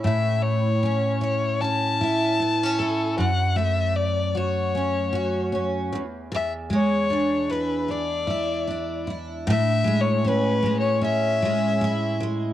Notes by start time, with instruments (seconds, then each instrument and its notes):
Already playing: steel-string acoustic guitar G#3 C#4 E4
0.04 steel-string acoustic guitar A2, violin E5
0.43 violin C#5
0.83 steel-string acoustic guitar C#4
1.21 steel-string acoustic guitar E4, violin C#5
1.61 steel-string acoustic guitar C#4, violin A5
2.01 steel-string acoustic guitar E4
2.40 steel-string acoustic guitar B3
2.63 steel-string acoustic guitar C#4
2.79 steel-string acoustic guitar E4, violin A4
3.18 steel-string acoustic guitar F#2, violin F#5
3.56 steel-string acoustic guitar A3, violin E5
3.96 violin D5
4.35 steel-string acoustic guitar F#4, violin C#5
4.75 steel-string acoustic guitar C#4
5.13 steel-string acoustic guitar F#4
5.52 steel-string acoustic guitar C#4
5.92 steel-string acoustic guitar E2
6.32 steel-string acoustic guitar E2
6.36 violin E5
6.70 steel-string acoustic guitar G#3
6.75 violin C#5
7.10 steel-string acoustic guitar D4
7.50 steel-string acoustic guitar E4, violin B4
7.88 steel-string acoustic guitar D4, violin D5
8.27 steel-string acoustic guitar E4
8.67 steel-string acoustic guitar D4
9.07 steel-string acoustic guitar E4
9.47 steel-string acoustic guitar A2, violin E5
9.84 steel-string acoustic guitar G#3
10.01 violin C#5
10.25 steel-string acoustic guitar C#4
10.29 violin B4
10.63 steel-string acoustic guitar G#3
10.80 violin C#5
11.01 steel-string acoustic guitar C#4, violin E5
11.42 steel-string acoustic guitar G#3
11.81 steel-string acoustic guitar E4
12.20 steel-string acoustic guitar G#3